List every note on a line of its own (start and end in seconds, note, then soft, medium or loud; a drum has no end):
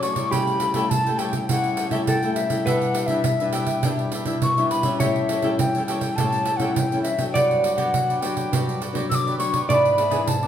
0.00 0.30 A2 medium
0.00 0.14 F#3 medium
0.00 0.14 A3 medium
0.00 0.14 C#4 medium
0.00 0.16 A4 soft
0.00 0.37 A4 medium
0.00 0.15 C#5 soft
0.00 0.14 D5 soft
0.00 0.33 C#6 medium
0.00 pandeiro medium
0.16 0.71 G3 medium
0.16 0.71 A3 medium
0.16 0.71 E4 medium
0.16 0.31 A4 soft
0.16 0.30 C#5 soft
0.16 0.30 D5 soft
0.16 pandeiro medium
0.31 0.88 C#3 medium
0.31 2.08 G4 medium
0.31 0.59 G4 medium
0.31 0.60 A4 medium
0.31 0.61 C#5 medium
0.31 0.61 G5 medium
0.31 0.91 B5 loud
0.31 pandeiro medium
0.47 pandeiro soft
0.60 0.73 G4 soft
0.60 0.74 A4 soft
0.60 0.75 C#5 soft
0.60 0.75 G5 medium
0.60 pandeiro medium
0.74 1.00 G3 medium
0.74 1.00 A3 medium
0.74 1.00 E4 medium
0.74 0.84 G4 medium
0.74 0.85 A4 medium
0.74 0.85 C#5 medium
0.74 0.85 G5 medium
0.74 pandeiro medium
0.90 1.47 C#3 medium
0.90 1.20 A5 medium
0.90 pandeiro medium
1.07 1.45 G3 medium
1.07 1.46 A3 medium
1.07 1.46 E4 medium
1.07 1.19 A4 soft
1.07 1.20 C#5 soft
1.07 1.19 G5 soft
1.07 pandeiro soft
1.18 1.33 G4 medium
1.18 1.34 A4 medium
1.18 1.33 C#5 medium
1.18 1.48 G5 medium
1.18 1.32 G5 medium
1.18 pandeiro medium
1.33 1.48 A4 soft
1.33 1.48 C#5 soft
1.33 1.47 G5 soft
1.33 pandeiro medium
1.49 2.05 C#3 medium
1.49 1.88 G3 medium
1.49 1.89 A3 medium
1.49 1.89 E4 medium
1.49 1.77 G4 medium
1.49 1.79 A4 medium
1.49 1.79 C#5 medium
1.49 1.90 F#5 medium
1.49 1.79 G5 medium
1.49 pandeiro medium
1.64 pandeiro soft
1.77 1.91 G4 medium
1.77 1.91 A4 soft
1.77 1.92 C#5 soft
1.77 1.91 G5 soft
1.77 pandeiro medium
1.90 2.16 G3 medium
1.90 2.17 A3 medium
1.90 2.17 E4 medium
1.90 2.02 G4 medium
1.90 2.02 A4 medium
1.90 2.02 C#5 medium
1.90 1.98 E5 medium
1.90 2.02 G5 medium
1.90 pandeiro medium
2.07 2.63 C#3 medium
2.07 2.65 A4 medium
2.07 2.34 G5 medium
2.07 pandeiro medium
2.23 2.47 G3 medium
2.23 2.48 A3 medium
2.23 2.48 E4 medium
2.23 2.50 A4 soft
2.23 2.49 C#5 soft
2.23 2.48 G5 medium
2.23 pandeiro soft
2.35 2.67 E5 medium
2.35 pandeiro medium
2.49 3.05 G3 medium
2.49 3.05 D4 medium
2.49 3.05 E4 medium
2.49 2.65 A4 soft
2.49 2.65 C#5 soft
2.49 2.64 G5 soft
2.49 pandeiro medium
2.66 3.22 B2 medium
2.66 2.93 D4 medium
2.66 2.94 G4 medium
2.66 5.07 B4 medium
2.66 2.95 B4 medium
2.66 2.95 E5 medium
2.66 3.08 F#5 medium
2.66 pandeiro medium
2.81 pandeiro soft
2.94 3.08 D4 soft
2.94 3.08 G4 soft
2.94 3.09 B4 soft
2.94 3.10 E5 soft
2.94 pandeiro medium
3.06 3.34 G3 medium
3.06 3.19 D4 medium
3.06 3.34 D4 medium
3.06 3.35 E4 medium
3.06 3.19 G4 medium
3.06 3.19 B4 medium
3.06 3.52 E5 medium
3.06 pandeiro medium
3.11 3.19 E5 medium
3.24 3.81 B2 medium
3.24 pandeiro medium
3.40 3.80 G3 medium
3.40 3.80 D4 medium
3.40 3.80 E4 medium
3.40 3.53 G4 soft
3.40 3.53 B4 soft
3.40 3.53 E5 soft
3.40 pandeiro soft
3.52 3.67 D4 medium
3.52 3.67 G4 medium
3.52 3.67 B4 medium
3.52 3.66 E5 medium
3.52 4.10 G5 medium
3.52 pandeiro medium
3.66 3.83 G4 soft
3.66 3.82 B4 soft
3.66 3.82 E5 soft
3.66 pandeiro medium
3.83 4.40 B2 medium
3.83 4.23 G3 soft
3.83 4.12 D4 medium
3.83 4.23 D4 medium
3.83 4.23 E4 medium
3.83 4.12 G4 medium
3.83 4.13 B4 medium
3.83 4.13 E5 medium
3.83 pandeiro medium
3.99 pandeiro soft
4.12 4.25 D4 soft
4.12 4.25 G4 soft
4.12 4.25 B4 medium
4.12 4.26 E5 medium
4.12 pandeiro medium
4.25 4.51 G3 medium
4.25 4.36 D4 medium
4.25 4.52 D4 medium
4.25 4.52 E4 medium
4.25 4.36 G4 medium
4.25 4.36 B4 medium
4.25 4.37 E5 medium
4.25 pandeiro medium
4.42 4.98 B2 medium
4.42 4.69 C#6 loud
4.42 pandeiro medium
4.58 4.82 G3 medium
4.58 4.82 D4 medium
4.58 4.82 E4 medium
4.58 4.86 G4 soft
4.58 4.85 B4 soft
4.58 4.83 E5 soft
4.58 pandeiro soft
4.70 5.02 B5 medium
4.70 pandeiro medium
4.83 5.39 G3 medium
4.83 5.39 C#4 medium
4.83 5.40 E4 medium
4.83 5.00 B4 soft
4.83 4.99 E5 soft
4.83 pandeiro medium
4.87 5.00 G4 soft
5.00 5.57 A2 medium
5.00 5.29 G4 medium
5.00 5.29 A4 medium
5.00 7.01 C#5 medium
5.00 5.30 C#5 medium
5.00 5.59 E5 medium
5.00 pandeiro medium
5.04 5.30 G5 medium
5.16 pandeiro soft
5.29 5.42 G4 soft
5.29 5.43 A4 soft
5.29 5.43 C#5 soft
5.29 5.44 G5 medium
5.29 pandeiro medium
5.42 5.69 G3 medium
5.42 5.69 C#4 medium
5.42 5.69 E4 medium
5.42 5.53 G4 medium
5.42 5.53 A4 medium
5.42 5.53 C#5 medium
5.42 5.54 G5 medium
5.42 pandeiro medium
5.59 6.15 E3 medium
5.59 5.85 G5 medium
5.59 pandeiro medium
5.75 6.14 G3 soft
5.75 6.14 C#4 medium
5.75 6.14 E4 medium
5.75 5.88 A4 soft
5.75 5.89 C#5 soft
5.75 5.88 G5 soft
5.75 pandeiro soft
5.86 6.02 G4 medium
5.86 6.02 A4 medium
5.86 6.18 G5 medium
5.86 pandeiro medium
5.90 6.02 C#5 medium
5.90 6.00 G5 medium
6.01 6.17 A4 soft
6.01 6.17 C#5 soft
6.01 6.16 G5 soft
6.01 pandeiro medium
6.16 6.74 A2 medium
6.16 6.46 G3 soft
6.16 6.46 C#4 medium
6.16 6.46 E4 medium
6.16 6.45 G4 medium
6.16 6.46 A4 medium
6.16 6.47 C#5 medium
6.16 6.58 A5 medium
6.16 pandeiro medium
6.21 6.47 G5 medium
6.32 pandeiro soft
6.45 6.60 G4 soft
6.45 6.60 A4 soft
6.45 6.60 C#5 soft
6.45 6.61 G5 medium
6.45 pandeiro medium
6.57 6.85 G3 medium
6.57 6.85 C#4 medium
6.57 6.85 E4 medium
6.57 6.70 G4 medium
6.57 6.76 F#5 medium
6.57 pandeiro medium
6.61 6.70 A4 medium
6.61 6.71 C#5 medium
6.61 6.71 G5 medium
6.75 7.32 E3 medium
6.75 7.02 G5 medium
6.75 pandeiro medium
6.92 7.16 G3 medium
6.92 7.17 C#4 medium
6.92 7.17 E4 medium
6.92 7.21 A4 soft
6.92 7.20 C#5 soft
6.92 7.19 G5 soft
6.92 pandeiro soft
7.03 7.25 E5 medium
7.03 pandeiro medium
7.17 7.73 F#3 medium
7.17 7.73 B3 medium
7.17 7.73 D4 medium
7.17 7.34 C#5 soft
7.17 7.33 G5 soft
7.17 pandeiro medium
7.22 7.35 A4 soft
7.29 7.35 G5 medium
7.34 7.90 G2 medium
7.34 7.62 F#4 medium
7.34 7.63 G4 medium
7.34 7.64 B4 medium
7.34 9.65 D5 medium
7.34 7.64 D5 medium
7.34 7.75 F#5 medium
7.34 pandeiro medium
7.51 pandeiro soft
7.63 7.77 F#4 soft
7.63 7.76 G4 soft
7.63 7.77 B4 soft
7.63 7.78 D5 soft
7.63 pandeiro medium
7.75 8.17 F#3 medium
7.75 8.17 B3 medium
7.75 8.17 D4 medium
7.75 7.87 F#4 medium
7.75 7.87 G4 medium
7.75 7.88 B4 medium
7.75 7.88 D5 medium
7.75 8.22 F#5 medium
7.75 pandeiro medium
7.93 8.49 D3 medium
7.93 pandeiro medium
8.09 8.23 G4 soft
8.09 8.23 B4 soft
8.09 8.22 D5 soft
8.09 pandeiro soft
8.21 8.47 F#3 soft
8.21 8.47 B3 medium
8.21 8.47 D4 medium
8.21 8.36 F#4 medium
8.21 8.37 G4 medium
8.21 8.36 B4 medium
8.21 8.83 G5 medium
8.21 pandeiro medium
8.25 8.35 D5 medium
8.36 8.51 G4 soft
8.36 8.51 B4 soft
8.36 8.50 D5 soft
8.36 pandeiro medium
8.52 9.08 G2 medium
8.52 8.80 F#3 medium
8.52 8.80 B3 medium
8.52 8.80 D4 medium
8.52 8.79 F#4 medium
8.52 8.81 G4 medium
8.52 8.82 B4 medium
8.52 8.82 D5 medium
8.52 pandeiro medium
8.69 pandeiro soft
8.81 8.94 F#4 soft
8.81 8.94 G4 soft
8.81 8.95 B4 medium
8.81 8.95 D5 medium
8.81 pandeiro medium
8.93 9.34 F#3 medium
8.93 9.34 B3 medium
8.93 9.34 D4 medium
8.93 9.05 F#4 medium
8.93 9.05 G4 medium
8.93 9.05 B4 medium
8.93 pandeiro medium
8.97 9.05 D5 medium
9.10 9.66 D3 medium
9.10 9.16 E6 medium
9.10 pandeiro medium
9.15 9.37 D6 loud
9.27 9.54 G4 soft
9.27 9.53 B4 soft
9.27 9.52 D5 soft
9.27 pandeiro soft
9.38 9.56 F#3 medium
9.38 9.57 B3 medium
9.38 9.57 D4 medium
9.38 9.67 C#6 loud
9.38 pandeiro medium
9.53 9.68 G4 soft
9.53 9.68 B4 soft
9.53 9.67 D5 soft
9.53 pandeiro medium
9.68 10.24 G#2 medium
9.68 9.96 E3 medium
9.68 9.96 B3 medium
9.68 9.96 D4 medium
9.68 9.96 E4 medium
9.68 9.98 G#4 medium
9.68 9.98 B4 medium
9.68 10.47 D5 medium
9.68 9.98 D5 medium
9.68 9.75 C#6 medium
9.68 pandeiro medium
9.74 10.30 B5 medium
9.85 pandeiro soft
9.98 10.09 E4 soft
9.98 10.10 G#4 soft
9.98 10.11 B4 medium
9.98 10.10 D5 medium
9.98 pandeiro medium
10.10 10.36 E3 medium
10.10 10.36 B3 medium
10.10 10.36 D4 medium
10.10 10.21 E4 medium
10.10 10.21 G#4 medium
10.10 10.22 B4 medium
10.10 10.21 D5 medium
10.10 pandeiro medium
10.27 10.47 G#2 medium
10.27 10.47 A5 medium
10.27 pandeiro medium
10.42 10.47 E3 medium
10.42 10.47 B3 medium
10.42 10.47 D4 medium
10.42 10.47 B4 soft
10.42 10.47 D5 soft
10.42 pandeiro soft